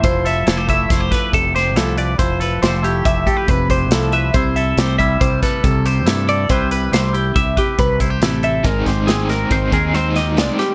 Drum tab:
HH |xxxxxxxxxx|xxxxxxxxxx|xxxxxxxxxx|xxxxxxxxxx|
SD |--o-oo-oo-|--o-----o-|--o--o--o-|--o-----o-|
BD |o--oooo---|o---oooo--|o--oooo---|o---oooo--|

HH |xxxxxxxxxx|
SD |-ooo---ooo|
BD |oo--oo----|